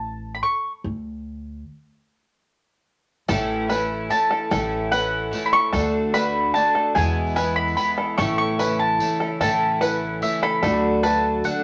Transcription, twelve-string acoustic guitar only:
3.28 A2 E3 A3 C#4 E4
3.68 E3 A3 C#4 E4
4.10 E3 A3 C#4 E4
4.50 A2 E3 A3 C#4 E4
4.91 E3 A3 C#4 E4
5.31 E3 A3 C#4 E4
5.52 A3 C#4 E4
5.73 D3 A3 D4 F#4
6.13 D3 A3 D4 F#4
6.54 D3 A3 D4 F#4
6.96 E2 B2 E3 G#3 B3 E4
7.36 E3 G#3 B3 E4
7.77 E3 G#3 B3 E4
8.18 A2 E3 A3 C#4 E4
8.59 E3 A3 C#4 E4
8.99 E3 A3 C#4 E4
9.20 A3 C#4 E4
9.40 A2 E3 A3 C#4 E4
9.81 E3 A3 C#4 E4
10.22 E3 A3 C#4 E4
10.63 D3 A3 D4 F#4
11.03 D3 A3 D4 F#4
11.44 D3 A3 D4 F#4

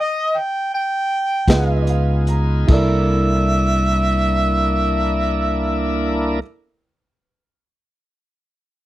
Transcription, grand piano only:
1.48 F4 G#4 B4 D#5
1.89 F5
2.29 A#5
2.67 E4 A4 A#4
2.72 D5

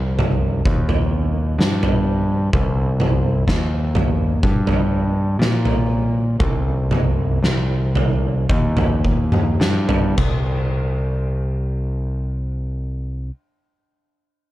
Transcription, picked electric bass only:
Already playing: C2
0.65 D#2
1.58 G2
2.53 C2
3.48 D#2
4.43 G2
5.39 A#2
6.40 C2
7.43 C2
8.49 D#2
9.60 G2
10.18 C2

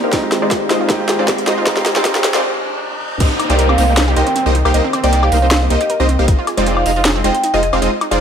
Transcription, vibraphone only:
3.69 F5
3.78 F5
4.17 G5
4.27 G5
5.04 G5
5.13 G5
5.23 F5
5.32 F5
5.42 F5
5.70 D#5
5.81 D#5
6.77 F5
6.86 F5
7.24 G5
7.34 G5
7.54 D#5

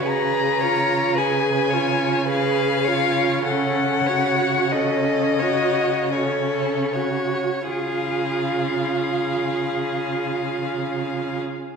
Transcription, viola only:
0.07 G#4
0.62 F4
1.17 G#4
1.73 F4
2.30 G#4
2.87 F4
3.46 C#4
4.09 F#4
4.74 C#4
5.41 F#4
6.14 C#4
6.95 F#4
7.71 F4

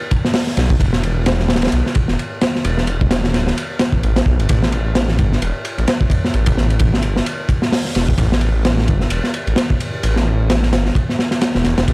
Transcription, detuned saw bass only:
0.57 B1
0.80 E1
1.49 D1
1.72 B1
2.09 E1
2.65 E1
3.34 D1
3.92 A1
4.03 A1
4.26 B1
4.39 G1
4.50 A1
5.19 G1
5.42 E1
5.78 A1
6.34 A1
7.03 G1
7.96 E1
8.18 A1
8.89 G1
9.11 E1
9.47 A1
10.03 A1
10.72 G1
11.55 E1
11.65 E1
11.78 E1
11.88 E1

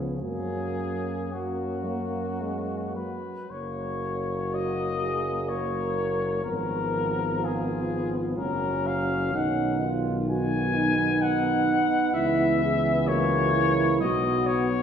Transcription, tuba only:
Already playing: C#2
0.23 F#2
3.50 F#1
6.46 G#1
8.38 F#1
9.34 B1
12.14 C#2
14.00 B1

